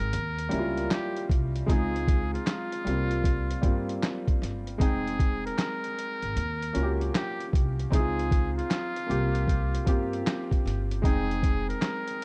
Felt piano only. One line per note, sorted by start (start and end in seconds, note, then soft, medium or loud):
0.00 0.14 G#3 loud
0.00 0.14 C4 medium
0.00 0.14 D#4 medium
0.00 0.14 G5 loud
0.49 1.25 G3 medium
0.49 1.26 A#3 medium
0.49 1.26 C#4 medium
0.49 0.60 E4 medium
0.59 1.30 F4 loud
1.66 2.71 G#3 loud
1.66 2.71 C4 medium
1.66 2.72 D#4 medium
1.66 2.72 F4 loud
2.85 3.52 G3 medium
2.85 3.52 A#3 medium
2.85 3.53 C4 medium
2.85 3.53 F4 medium
3.62 4.37 G3 medium
3.62 4.38 A#3 medium
3.62 4.38 C4 medium
3.62 4.39 F4 medium
4.78 5.82 G#3 loud
4.78 5.83 C4 medium
4.78 5.84 D#4 medium
4.78 5.84 G5 loud
6.73 7.49 A#3 medium
6.73 7.49 C#4 medium
6.73 7.50 F4 medium
6.73 6.84 F#4 medium
6.83 7.54 G4 medium
7.90 8.94 C4 loud
7.90 8.95 D#4 medium
7.90 8.00 E4 medium
7.90 8.96 G#4 loud
7.99 8.99 F4 loud
9.07 9.74 A#3 medium
9.07 9.75 C4 medium
9.07 9.75 F4 medium
9.07 9.76 G4 medium
9.85 10.60 A#3 medium
9.85 10.61 C4 medium
9.85 10.61 F4 medium
9.85 10.62 G4 loud
11.02 12.06 G#3 loud
11.02 12.06 C4 medium
11.02 12.07 D#4 medium
11.02 12.08 G5 loud